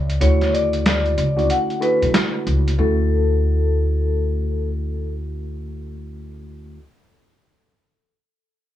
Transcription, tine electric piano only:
0.20 C#3 D3 A3 E4 F#4
1.36 D3 A3 C#4 E4 F#4
1.80 D3 A3 C#4 E4 F#4
2.78 A3 C#4 E4 F#4

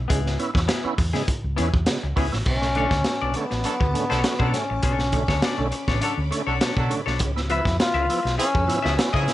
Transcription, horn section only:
3.65 F#3 D4 A4
4.09 F#3 D4 A4
4.39 F#3 D4 A4
6.02 F#3 D4 A4
6.47 F#3 D4 A4
6.76 F#3 D4 A4
8.38 F3 E4 G#4
8.84 F3 E4 G#4
9.15 F3 E4 G#4

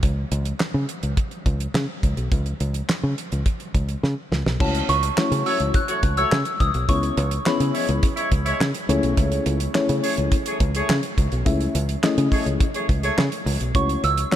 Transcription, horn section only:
5.46 A3 F#4 C#5
5.88 A3 F#4 C#5
6.17 A3 F#4 C#5
7.74 G#3 E4 C#5
8.17 G#3 E4 C#5
8.45 G#3 E4 C#5
10.04 A3 G#4 C#5
10.46 A3 G#4 C#5
10.75 A3 G#4 C#5
12.32 A3 G#4 C#5
12.74 A3 G#4 C#5
13.03 A3 G#4 C#5

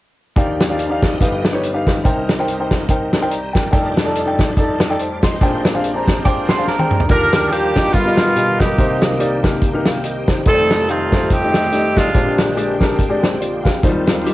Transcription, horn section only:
7.10 D4 G4 A#4
7.50 A#3 D4 G4
7.92 A#3 B3 F4
8.59 A#3 D#4 G4
10.47 C4 D#4 A4
10.89 A3 C4 F4
11.31 C4 D#4 G4
11.97 G#3 D4 F4

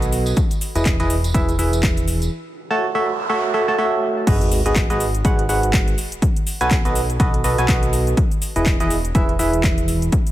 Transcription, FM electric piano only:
Already playing: B3 F#4 A4 B4 D#5
0.75 E3 E4 G#4 B4 D#5
1.00 E3 E4 G#4 B4 D#5
1.34 E3 E4 G#4 B4 E5
1.59 E3 E4 G#4 B4 E5
2.71 A3 F#4 A4 C#5 A5
2.95 A3 F#4 A4 C#5 E5
3.30 A3 F#4 A4 C#5 E5
3.54 A3 F#4 A4 C#5 E5
3.68 A3 F#4 A4 C#5 A5
3.78 A3 F#4 A4 C#5 E5
4.27 G#3 F#4 G#4 B4 D#5
4.66 G#3 F#4 G#4 B4 D#5
4.90 G#3 F#4 G#4 B4 D#5
5.25 G#3 F#4 G#4 B4 F#5
5.49 G#3 F#4 G#4 B4 F#5
6.61 B3 F#4 A4 B4 G#5
6.85 B3 F#4 A4 B4 D#5
7.20 B3 F#4 A4 B4 D#5
7.44 B3 F#4 A4 B4 D#5
7.58 B3 F#4 A4 B4 G#5
7.69 B3 F#4 A4 B4 D#5
8.56 E3 E4 G#4 B4 D#5
8.80 E3 E4 G#4 B4 D#5
9.15 E3 E4 G#4 B4 E5
9.39 E3 E4 G#4 B4 E5

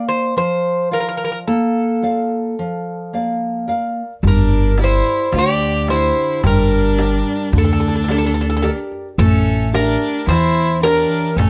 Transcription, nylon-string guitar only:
Already playing: A#3 A#4 D5 F5
0.37 F3
0.91 F4 D5 F5
1.47 A#3
2.03 F4 D5 F5
2.59 F3
3.13 A#3 D5 F5
3.68 A#4 D5 F5
4.23 G3
4.78 G4 A#4 D5
5.34 D3
5.88 G4 A#4 D5
6.44 G3
6.98 G4 A#4 D5
7.54 D3
8.09 G4 A#4 D5
8.63 G4 A#4 D5
9.19 A3
9.73 E4 G4 E5
10.30 E3
10.83 E4 G4 C#5
11.38 A3

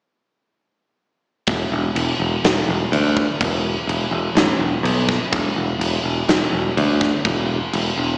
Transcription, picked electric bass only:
1.48 E1
1.72 E1
1.95 E1
2.20 E1
2.44 E1
2.69 E1
2.92 D2
3.41 E1
3.87 E1
4.11 E1
4.35 A1
4.59 E1
4.83 B1
5.32 E1
5.56 E1
5.79 E1
6.04 E1
6.28 E1
6.53 E1
6.77 D2
7.25 E1
7.73 E1
7.98 E1

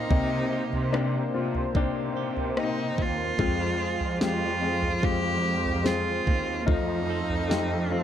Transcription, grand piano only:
Already playing: A#3 C4 D4 F4
0.10 C3 A#3 C4 D#4
0.92 A#3 C4 D4
1.33 A#3 C4 F4
1.75 A#3 C4 D4
2.56 A#3 C4 D#4
3.39 G#3 C4 F4
4.20 G#3 C4 G4
4.61 G#3 C4 G#4
5.02 G#3 C4 F4
5.83 G#3 C4 G#4
6.65 A3 D#4 F4
7.48 A3 D#4 G4
7.90 A3 D#4 F4

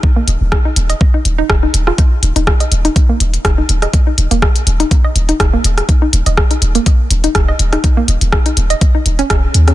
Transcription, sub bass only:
0.28 D#1
0.41 D#1
0.76 D#1
1.25 D#1
1.50 D#1
1.74 D#1
2.23 D#1
2.36 D#1
2.72 D#1
3.20 D#1
3.45 D#1
3.69 D#1
4.18 D#1
4.31 D#1
4.67 D#1
5.16 D#1
5.40 D#1
5.64 D#1
6.13 D#1
6.26 D#1
6.62 D#1
7.11 D#1
7.35 D#1
7.59 D#1
8.08 D#1
8.21 D#1
8.57 D#1
9.06 D#1
9.30 D#1
9.55 D#2

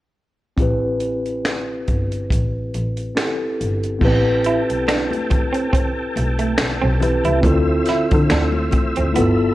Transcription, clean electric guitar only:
4.46 E4
4.88 D4
5.30 muted clean electric guitar stroke
5.53 C4
5.73 C4
6.17 muted clean electric guitar stroke
6.39 A3
6.82 C4
7.03 muted clean electric guitar stroke
7.25 E4
7.89 E4
8.32 D4
8.73 muted clean electric guitar stroke
8.97 C4
9.16 B3

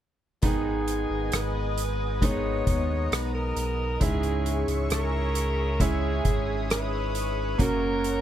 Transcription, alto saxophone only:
0.46 G#4
1.35 B4
2.24 C#5
3.13 B4
3.35 A#4
4.02 G#4
4.91 A#4
5.81 G#4
6.71 B4
7.60 A#4

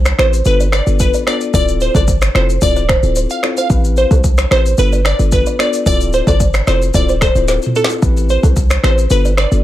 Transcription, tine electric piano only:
0.18 C4 E4 G4 B4
0.45 B3 D4 F4 A4
0.86 B3 D4 F4 A4
1.26 B3 D4 F4 A4
1.53 C4 E4 F4 A4
2.35 C4 E4 F4 A4
2.62 C4 E4 F4 A4
3.03 C4 E4 F4 A4
3.43 C4 E4 F4 A4
3.70 C4 E4 G4 B4
4.51 C4 E4 G4 B4
4.78 B3 D4 F4 A4
5.19 B3 D4 F4 A4
5.59 B3 D4 F4 A4
5.86 C4 E4 F4 A4
6.67 C4 E4 F4 A4
6.94 C4 E4 F4 A4
7.35 C4 E4 F4 A4
7.75 C4 E4 F4 A4
8.02 C4 E4 G4 B4
8.83 C4 E4 G4 B4
9.10 B3 D4 F4 A4
9.51 B3 D4 F4 A4

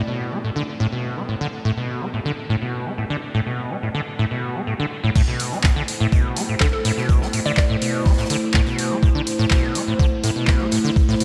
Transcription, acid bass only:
0.07 B2
0.32 A3
0.44 A2
0.56 D3
0.80 A2
0.92 B2
1.17 A3
1.28 A2
1.41 D3
1.65 A2
1.77 B2
2.01 A3
2.13 A2
2.25 D3
2.49 A2
2.62 B2
2.86 A3
2.98 A2
3.10 D3
3.34 A2
3.46 B2
3.70 A3
3.83 A2
3.95 D3
4.19 A2
4.31 B2
4.55 A3
4.67 A2
4.79 D3
5.04 A2
5.16 A2
5.28 B2
5.52 A3
5.64 A2
5.76 D3
6.00 A2
6.12 B2
6.37 A3
6.49 A2
6.61 D3
6.85 A2
6.97 B2
7.21 A3
7.33 A2
7.46 D3
7.70 A2
7.82 B2
8.06 A3
8.18 A2
8.30 D3
8.54 A2
8.67 B2
8.91 A3
9.03 A2
9.15 D3
9.39 A2
9.51 B2
9.75 A3
9.87 A2
9.99 D3
10.24 A2
10.36 B2
10.60 A3
10.72 A2
10.84 D3
11.08 A2
11.20 B2

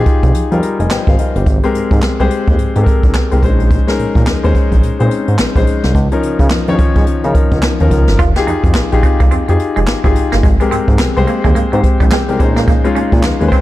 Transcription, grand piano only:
Already playing: D#4 F4 G4 G#4
0.51 G3 D#4 F4 A#4
0.63 F5 A#5
0.80 D#5 G#5
0.91 C5 G5
1.08 C5 F5
1.19 A#4 D#5
1.36 G4 C5
1.64 G#3 C4 G4 A#4
2.20 G#3 C4 G4 C5
2.76 G#3 C4 G4 A4
2.83 A#4
3.32 G#3 C4 G4 A#4
3.43 G#3 C#4 D#4 C5
3.87 G#3 C#4 D#4 A#4
4.43 G#3 C#4 D#4 C5
4.99 G#3 C4 D#4 C5
5.06 C#4
5.56 G#3 C#4 D#4 C5
6.12 F3 C#4 D#4 A#4
6.68 D#3 C#4 D#4 C#5
6.74 F3
7.24 F3 C#4 D#4 A#4
7.80 D#3 C#4 D#4 A#4
7.87 F3
8.36 D#4 F4 G4 G#4
8.92 D#4 F4 G4 G#4
9.48 D#4 F4 G4 G#4
10.04 D#4 F4 G4 G#4
10.60 G#3 C4 G4 A#4
11.17 G#3 C4 G4 C5
11.73 G#3 C4 G4 C5
12.12 G5
12.28 G#3 C4 G4 A#4
12.39 G#3 C#4 D#4 C5 A#5
12.84 G#3 C#4 D#4 F4
13.41 G#3 C#4 D#4 B4
13.48 C5

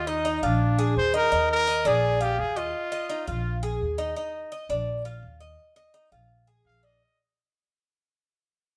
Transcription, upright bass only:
Already playing: D#2
0.42 A#1
0.96 D#2
1.32 D#2
1.85 A#1
2.38 D#2
3.28 A#1
3.81 D#2
4.69 A#1
5.23 D#2
6.12 A#1
6.65 A#1

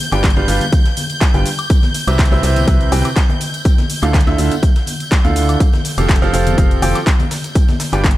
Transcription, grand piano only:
0.12 G3 D4 F4 G4 B4 G5
0.37 G3 D4 F4 G4 B4 F5
0.48 G3 D4 F4 G4 B4 F5
1.34 G3 D4 F4 G4 B4 G5
2.08 C3 C4 E4 G4 B4 E5
2.32 C3 C4 E4 G4 B4 E5
2.43 C3 C4 E4 G4 B4 E5
2.68 C3 C4 E4 G4 B4 E5
2.92 C3 C4 E4 G4 B4 G5
4.03 D3 D4 E4 F4 A4 F5
4.27 D3 D4 E4 F4 A4 E5
4.38 D3 D4 E4 F4 A4 E5
5.25 D3 D4 E4 F4 A4 F5
5.98 F3 C4 F4 G4 A4 F5
6.22 F3 C4 F4 G4 A4 F5
6.33 F3 C4 F4 G4 A4 F5
6.58 F3 C4 F4 G4 A4 F5
6.82 F3 C4 F4 G4 A4 G5
7.93 G3 D4 F4 G4 B4 G5

